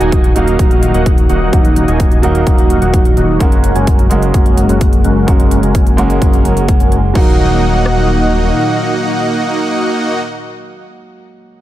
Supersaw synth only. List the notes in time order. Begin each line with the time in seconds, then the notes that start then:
0.01 A#3 D#4 F#4 D#5 G#5
0.36 A#3 D#4 F#4 D#5 F5
0.94 A#3 D#4 F#4 D#5 F#5
1.30 A#3 D#4 F#4 D#5 F#5
1.53 A#3 D#4
1.88 A#3 D#4 F#4 D#5 G#5
2.23 A#3 D#4 F#4 D#5 F5
2.47 A#3 D#4 F#4 D#5 F5
2.82 A#3 D#4 F#4 D#5 F#5
3.17 A#3 D#4 F#4 D#5 F#5
3.40 G#3 C#4 F#4 A#4 F#5
3.76 G#3 C#4 F#4 A#4 G#5
4.11 G#3 C#4 F#4 A#4 D#5
4.34 G#3 C#4 F#4 A#4 D#5
4.69 G#3 C#4 F#4 A#4 F#5
5.04 G#3 C#4 F#4 A#4 F#5
5.28 G#3 C#4 F#4 A#4 F#5
5.63 G#3 C#4 F#4 A#4 G#5
5.98 G#3 C#4 F#4 A#4 D#5
6.22 G#3 C#4 F#4 D#5
6.45 G#3 C#4 F#4 A#4 A#5
6.80 G#3 C#4 F#4 A#4 G#5
7.15 A#3 D#4 F#4 D#5 F#5